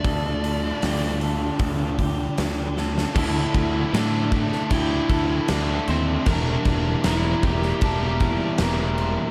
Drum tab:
CC |----------------|x-x-x-x-x-x-x-x-|x-x-x-x-x-x-x-x-|
HH |o-o-o-o-o-o-o---|----------------|----------------|
SD |----o-------o-oo|----o--o----o---|----o--o----o---|
BD |o-------o-o-----|o-o---o-o-o-----|o-o---o-o-o-----|